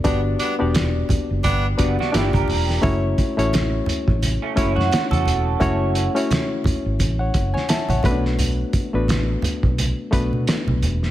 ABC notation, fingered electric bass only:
X:1
M:4/4
L:1/16
Q:"Swing 16ths" 1/4=86
K:F#m
V:1 name="Fingered electric bass" clef=bass
=G,,,2 z E,,,3 z F,,, G,,,2 F,,, z G,,, G,,, E,,,2 | F,,,2 z A,,,3 z A,,,2 z F,,, F,, z E,, E,,,2 | F,,,3 z4 G,,, A,,,2 F,,, z2 A,,, B,,,2- | B,,,2 z A,,,3 z B,,,2 z B,,, B,, z B,,, E,,,2 |]